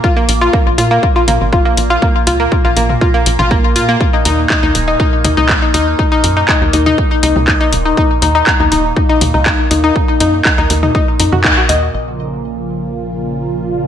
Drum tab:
HH |--o---o---o---o-|--o---o---o---o-|--o---o---o---o-|--o---o---o---o-|
CP |----------------|----------------|----x-------x---|----x-------x---|
T2 |----------o-----|-------o---o----|----------o-----|-------o---o----|
BD |o---o---o---o---|o---o---o---o---|o---o---o---o---|o---o---o---o---|

HH |--o---o---o---o-|--o---o---o---o-|----------------|
CP |----x-------x---|----x-------x---|----------------|
T2 |----------o-----|-------o---o----|----------------|
BD |o---o---o---o---|o---o---o---o---|----------------|